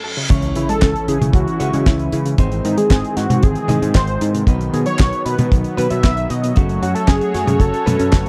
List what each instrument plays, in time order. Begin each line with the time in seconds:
Already playing: reverse cymbal
0.04 synth arpeggio sound A4
0.17 synth arpeggio sound C#3
0.30 fingered electric bass C#2, synth arpeggio sound C#3, clean electric guitar E3 C#4 E4 C#5, analog synth pad E3 C#4 E4, kick, closed hi-hat, crash, impact
0.42 closed hi-hat
0.55 fingered electric bass C#3, synth arpeggio sound E3, analog synth lead E4, closed hi-hat
0.69 synth arpeggio sound G#3, analog synth lead A4, closed hi-hat
0.82 fingered electric bass C#2, synth arpeggio sound C#4, kick, snare, clap, closed hi-hat
0.96 closed hi-hat
1.08 fingered electric bass C#3, synth arpeggio sound E4, analog synth lead G#4, closed hi-hat
1.21 synth arpeggio sound C#3, fingered electric bass C#3, closed hi-hat, high tom
1.33 fingered electric bass C#2, synth arpeggio sound C#3, analog synth lead F#4, kick, closed hi-hat
1.48 closed hi-hat
1.60 fingered electric bass C#3, synth arpeggio sound E3, clean electric guitar G#3 C#4 E4 C#5, closed hi-hat
1.73 fingered electric bass C#3, synth arpeggio sound G#3, closed hi-hat
1.86 fingered electric bass C#2, synth arpeggio sound C#4, analog synth lead E4, kick, snare, clap, closed hi-hat
1.99 closed hi-hat
2.12 fingered electric bass C#3, synth arpeggio sound E4, closed hi-hat
2.26 synth arpeggio sound C#3, closed hi-hat
2.38 fingered electric bass G#1, synth arpeggio sound C3, analog synth pad D#3 C4, clean electric guitar G#3 C4 D#4 C5, kick, closed hi-hat
2.52 closed hi-hat
2.65 fingered electric bass G#2, synth arpeggio sound D#3, analog synth lead D#4, closed hi-hat
2.78 synth arpeggio sound G#3, analog synth lead G#4, closed hi-hat
2.90 fingered electric bass G#1, synth arpeggio sound C4, kick, snare, clap, closed hi-hat
3.04 closed hi-hat
3.16 fingered electric bass G#2, synth arpeggio sound D#4, analog synth lead F#4, snare, closed hi-hat
3.30 fingered electric bass G#2, synth arpeggio sound C3, closed hi-hat, high tom
3.43 fingered electric bass G#1, synth arpeggio sound C3, analog synth lead G#4, kick, closed hi-hat
3.55 closed hi-hat
3.68 fingered electric bass G#2, synth arpeggio sound D#3, clean electric guitar G#3 C4 D#4 D#5, closed hi-hat, high tom
3.82 fingered electric bass G#2, synth arpeggio sound G#3, closed hi-hat
3.95 fingered electric bass G#1, synth arpeggio sound C4, analog synth lead C5, kick, snare, clap, closed hi-hat
4.07 closed hi-hat
4.21 fingered electric bass G#2, synth arpeggio sound D#4, closed hi-hat
4.35 synth arpeggio sound C3, closed hi-hat
4.47 fingered electric bass B1, synth arpeggio sound B2, clean electric guitar F#3 B3 D#4 B4, analog synth pad F#3 B3, kick, closed hi-hat
4.61 closed hi-hat
4.73 fingered electric bass B2, synth arpeggio sound D#3, analog synth lead G#4, closed hi-hat
4.86 synth arpeggio sound F#3, analog synth lead C#5, closed hi-hat
4.99 fingered electric bass B1, synth arpeggio sound B3, kick, snare, clap, closed hi-hat
5.13 closed hi-hat
5.25 fingered electric bass B2, synth arpeggio sound D#4, analog synth lead B4, closed hi-hat
5.38 fingered electric bass B2, synth arpeggio sound B2, closed hi-hat, high tom
5.52 fingered electric bass B1, synth arpeggio sound B2, kick, closed hi-hat
5.64 closed hi-hat
5.77 fingered electric bass B2, synth arpeggio sound D#3, clean electric guitar D#3 F#3 B3 B4, analog synth lead B4, closed hi-hat
5.90 fingered electric bass B2, synth arpeggio sound F#3, analog synth lead E5, closed hi-hat
6.04 fingered electric bass B1, synth arpeggio sound B3, kick, snare, clap, closed hi-hat
6.17 closed hi-hat
6.30 fingered electric bass B2, synth arpeggio sound D#4, analog synth lead D#5, closed hi-hat
6.43 synth arpeggio sound B2, closed hi-hat
6.56 fingered electric bass F#1, synth arpeggio sound C#3, clean electric guitar F#3 A3 C#4 F#4, analog synth pad A3 F#4 C#5, kick, closed hi-hat
6.69 closed hi-hat
6.82 fingered electric bass F#2, synth arpeggio sound F#3, analog synth lead F#4, closed hi-hat
6.95 synth arpeggio sound A3, analog synth lead A4, closed hi-hat
7.08 fingered electric bass F#1, synth arpeggio sound C#4, analog synth lead G#4, kick, snare, clap, closed hi-hat
7.21 closed hi-hat
7.34 fingered electric bass F#2, synth arpeggio sound F#4, snare, closed hi-hat
7.47 fingered electric bass F#2, synth arpeggio sound C#3, closed hi-hat, high tom
7.60 fingered electric bass F#1, synth arpeggio sound C#3, analog synth lead A4, kick, closed hi-hat
7.74 closed hi-hat
7.86 fingered electric bass F#2, clean electric guitar F#3 A3 C#4 B4, synth arpeggio sound A3, closed hi-hat, high tom
7.99 fingered electric bass F#2, synth arpeggio sound C#4, closed hi-hat
8.12 fingered electric bass F#1, kick, snare, clap, closed hi-hat
8.26 synth arpeggio sound C#3